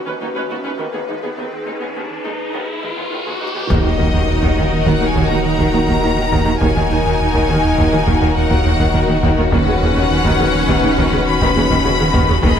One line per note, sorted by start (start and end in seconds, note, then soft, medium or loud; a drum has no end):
0.00 0.75 D#3 medium
0.00 0.79 C#4 medium
0.00 0.75 F#4 medium
0.00 3.70 B4 medium
0.00 riser medium
0.06 0.12 D#2 soft
0.06 0.15 D#3 medium
0.06 0.11 C#4 soft
0.06 0.12 B4 soft
0.21 0.29 D#2 medium
0.21 0.27 D#2 soft
0.21 0.26 F#3 soft
0.21 0.26 D#4 soft
0.35 0.42 D#2 soft
0.35 0.44 D#3 medium
0.35 0.41 C#4 soft
0.35 0.41 B4 soft
0.49 0.58 D#2 soft
0.49 0.56 D#2 soft
0.49 0.56 B3 soft
0.49 0.56 F#4 soft
0.64 0.71 D#2 soft
0.64 0.73 D#3 soft
0.64 0.70 C#4 soft
0.64 0.70 B4 soft
0.77 0.87 D#2 medium
0.77 0.85 D#2 soft
0.77 0.84 D#3 soft
0.77 3.67 D#3 medium
0.77 0.84 B3 soft
0.77 3.70 D#4 medium
0.77 3.70 G#4 medium
0.93 0.99 D#2 soft
0.93 1.02 D#2 soft
0.93 0.99 B3 soft
0.93 0.99 G#4 soft
1.08 1.14 D#2 soft
1.08 1.17 D#3 medium
1.08 1.14 G#3 soft
1.08 1.14 D#4 soft
1.23 1.28 D#2 soft
1.23 1.32 D#2 soft
1.23 1.29 B3 soft
1.23 1.28 G#4 soft
1.37 1.46 D#2 medium
1.37 1.43 D#2 soft
1.37 1.43 D#3 soft
1.37 1.43 B3 soft
1.52 1.61 D#2 soft
1.66 1.72 D#2 soft
1.66 1.75 D#2 soft
1.66 1.72 G#3 soft
1.66 1.72 D#4 soft
1.80 1.87 D#2 soft
1.80 1.90 D#2 soft
1.80 1.86 B3 soft
1.80 1.86 G#4 soft
1.96 2.01 D#2 soft
1.96 2.04 D#2 medium
1.96 2.02 D#3 soft
1.96 2.01 B3 soft
2.11 2.19 D#3 soft
2.24 2.30 D#2 soft
2.24 2.34 D#2 soft
2.24 2.30 G#3 soft
2.24 2.30 D#4 soft
2.40 2.48 D#2 soft
2.53 2.59 D#2 soft
2.53 2.63 D#2 medium
2.53 2.59 D#3 soft
2.53 2.59 B3 soft
2.69 2.77 D#2 soft
2.82 2.88 D#2 soft
2.82 2.92 D#3 soft
2.82 2.88 G#3 soft
2.82 2.88 D#4 soft
2.96 3.03 D#2 soft
2.96 3.06 D#3 soft
2.96 3.03 B3 soft
2.96 3.02 G#4 soft
3.11 3.21 D#2 medium
3.11 3.18 D#2 soft
3.11 3.17 D#3 soft
3.11 3.17 B3 soft
3.26 3.33 D#2 soft
3.26 3.36 D#3 medium
3.26 3.32 B3 soft
3.26 3.32 G#4 soft
3.40 3.50 D#2 soft
3.40 3.47 D#2 soft
3.40 3.46 G#3 soft
3.40 3.46 D#4 soft
3.54 3.62 D#2 soft
3.54 3.64 D#3 soft
3.54 3.60 B3 soft
3.54 3.60 G#4 soft
3.69 6.57 D#1 medium
3.69 3.76 D#2 medium
3.69 3.79 D#2 medium
3.69 3.76 D#2 medium
3.69 3.75 D#3 soft
3.69 6.57 D#3 soft
3.69 6.58 D#3 medium
3.69 6.58 F#3 soft
3.69 6.57 A#3 medium
3.69 6.57 D#4 soft
3.69 6.58 D#4 medium
3.69 6.58 F#4 soft
3.69 6.58 F#4 medium
3.69 6.58 A#4 soft
3.69 6.58 A#4 medium
3.69 4.83 D#5 medium
3.69 taiko medium
3.69 impact medium
3.84 3.91 D#2 soft
3.84 3.94 D#2 medium
3.84 3.90 D#3 soft
3.98 4.05 D#2 soft
3.98 4.08 D#2 medium
3.98 4.05 D#2 soft
3.98 4.04 D#3 soft
4.13 4.22 D#2 medium
4.13 4.20 D#2 medium
4.13 4.19 D#3 medium
4.29 4.38 D#2 medium
4.42 4.49 D#2 medium
4.42 4.52 D#2 medium
4.42 4.48 D#3 medium
4.42 taiko medium
4.57 4.63 D#2 soft
4.57 4.64 D#2 soft
4.57 4.63 D#3 soft
4.57 4.67 D#3 soft
4.73 4.82 D#2 medium
4.85 4.91 D#2 medium
4.85 4.93 D#2 medium
4.85 4.96 D#2 medium
4.85 4.92 D#3 soft
4.85 5.06 F#5 medium
4.85 taiko medium
5.01 5.07 D#2 soft
5.01 5.07 D#3 soft
5.01 5.11 D#3 medium
5.07 5.26 G#5 medium
5.15 5.21 D#2 soft
5.15 5.22 D#2 soft
5.15 5.25 D#2 medium
5.15 5.21 D#3 soft
5.15 taiko medium
5.28 5.37 D#2 soft
5.28 5.40 D#2 soft
5.28 5.36 D#3 soft
5.28 5.44 A#5 medium
5.46 5.54 D#2 soft
5.46 6.59 A#5 medium
5.59 5.65 D#2 medium
5.59 5.69 D#2 medium
5.59 5.65 D#3 soft
5.59 taiko medium
5.73 5.79 D#2 soft
5.73 5.80 D#2 soft
5.73 5.83 D#2 medium
5.73 5.79 D#3 soft
5.88 5.98 D#2 medium
5.88 5.95 D#2 medium
5.88 5.94 D#3 medium
5.88 taiko medium
6.02 6.09 D#2 soft
6.02 6.13 D#2 soft
6.02 6.08 D#3 soft
6.17 6.24 D#2 soft
6.17 6.23 D#3 soft
6.17 6.27 D#3 medium
6.32 6.38 D#2 medium
6.32 6.39 D#2 medium
6.32 6.42 D#2 medium
6.32 6.38 D#3 medium
6.32 taiko medium
6.46 6.53 D#2 soft
6.46 6.56 D#2 medium
6.46 6.52 D#3 soft
6.61 12.40 D#1 medium
6.61 6.67 D#2 medium
6.61 6.71 D#2 medium
6.61 12.27 D#3 soft
6.61 12.40 D#3 medium
6.61 6.67 D#3 medium
6.61 12.27 F#3 soft
6.61 9.49 A#3 soft
6.61 9.49 D#4 medium
6.61 9.49 D#4 soft
6.61 9.49 D#4 medium
6.61 12.40 F#4 medium
6.61 12.40 F#4 soft
6.61 9.48 A#4 medium
6.61 9.49 A#4 soft
6.61 8.32 G#5 medium
6.61 taiko medium
6.76 6.82 D#2 soft
6.76 6.85 D#2 medium
6.76 6.82 D#3 soft
6.90 6.96 D#2 soft
6.90 6.97 D#2 soft
6.90 7.00 D#2 medium
6.90 6.97 D#3 soft
7.05 7.11 D#2 medium
7.05 7.14 D#2 medium
7.05 7.11 D#3 medium
7.21 7.29 D#2 medium
7.34 7.40 D#2 medium
7.34 7.43 D#2 medium
7.34 7.40 D#3 medium
7.34 taiko medium
7.48 7.54 D#2 soft
7.48 7.55 D#2 soft
7.48 7.55 D#3 soft
7.48 7.58 D#3 medium
7.64 7.73 D#2 medium
7.77 7.83 D#2 medium
7.77 7.84 D#2 medium
7.77 7.87 D#2 medium
7.77 7.84 D#3 medium
7.77 taiko medium
7.92 7.98 D#2 soft
7.92 7.98 D#3 soft
7.92 8.02 D#3 medium
8.06 8.13 D#2 medium
8.06 8.16 D#2 medium
8.06 8.12 D#3 medium
8.06 taiko medium
8.21 8.28 D#2 soft
8.21 8.31 D#2 medium
8.21 8.27 D#3 soft
8.37 8.46 D#2 medium
8.37 9.24 F#5 medium
8.50 8.57 D#2 medium
8.50 8.60 D#2 medium
8.50 8.56 D#3 soft
8.50 taiko medium
8.64 8.70 D#2 soft
8.64 8.71 D#2 soft
8.64 8.74 D#2 medium
8.64 8.71 D#3 soft
8.79 8.85 D#2 medium
8.79 8.89 D#2 medium
8.79 8.85 D#3 medium
8.79 taiko medium
8.94 9.00 D#2 soft
8.94 9.04 D#2 medium
8.94 9.00 D#3 soft
9.09 9.14 D#2 soft
9.09 9.14 D#3 soft
9.09 9.18 D#3 medium
9.23 9.29 D#2 medium
9.23 9.32 D#2 medium
9.23 9.29 D#2 medium
9.23 9.29 D#3 medium
9.23 taiko medium
9.38 9.43 D#2 soft
9.38 9.47 D#2 medium
9.38 9.44 D#3 soft
9.52 9.58 D#2 medium
9.52 9.61 D#2 medium
9.52 9.59 D#2 medium
9.52 9.58 D#3 medium
9.52 12.27 B3 medium
9.52 12.27 C#4 medium
9.52 12.43 C#4 medium
9.52 12.44 C#4 medium
9.52 12.44 B4 medium
9.52 12.40 B4 medium
9.52 11.23 F#5 medium
9.52 taiko medium
9.67 9.73 D#2 soft
9.67 9.76 D#2 medium
9.67 9.73 C#3 soft
9.82 9.88 D#2 soft
9.82 9.91 D#2 medium
9.82 9.88 C#3 soft
9.96 10.02 D#2 medium
9.96 10.05 D#2 medium
9.96 10.03 D#3 medium
10.11 10.20 D#2 medium
10.25 10.31 D#2 medium
10.25 10.34 D#2 medium
10.25 10.31 D#3 medium
10.25 taiko medium
10.40 10.46 D#2 medium
10.40 10.46 D#2 soft
10.40 10.46 C#3 soft
10.40 10.49 D#3 medium
10.55 10.63 D#2 medium
10.68 10.75 D#2 medium
10.68 10.78 D#2 medium
10.68 10.75 D#2 medium
10.68 10.74 D#3 medium
10.68 taiko medium
10.84 10.90 D#2 soft
10.84 10.90 C#3 soft
10.84 10.93 D#3 medium
10.98 11.04 D#2 medium
10.98 11.07 D#2 medium
10.98 11.04 D#3 medium
10.98 taiko medium
11.12 11.21 D#2 medium
11.12 11.19 D#2 soft
11.12 11.19 C#3 soft
11.27 11.36 D#2 medium
11.27 12.42 B5 medium
11.42 11.47 D#2 medium
11.42 11.51 D#2 medium
11.42 11.48 D#3 medium
11.42 taiko medium
11.56 11.62 D#2 medium
11.56 11.62 D#2 soft
11.56 11.66 D#2 medium
11.56 11.63 C#3 medium
11.71 11.77 D#2 medium
11.71 11.80 D#2 medium
11.71 11.77 D#3 medium
11.71 taiko medium
11.86 11.91 D#2 medium
11.86 11.95 D#2 medium
11.86 11.92 D#2 soft
11.86 11.91 C#3 medium
12.00 12.06 D#2 soft
12.00 12.06 C#3 medium
12.00 12.09 D#3 medium
12.14 12.20 D#2 medium
12.14 12.21 D#2 medium
12.14 12.24 D#2 medium
12.14 12.20 D#3 medium
12.14 taiko medium
12.28 12.35 D#2 medium
12.28 12.38 D#2 medium
12.28 12.34 C#3 medium
12.42 12.59 D#1 medium
12.42 12.49 D#2 medium
12.42 12.52 D#2 medium
12.42 12.50 D#2 medium
12.42 12.59 D#3 medium
12.42 12.49 D#3 medium
12.42 12.59 D#3 medium
12.42 12.59 G#3 medium
12.42 12.59 D#4 medium
12.42 12.59 G#4 medium
12.42 12.59 D#5 medium
12.42 12.59 B5 medium
12.42 taiko loud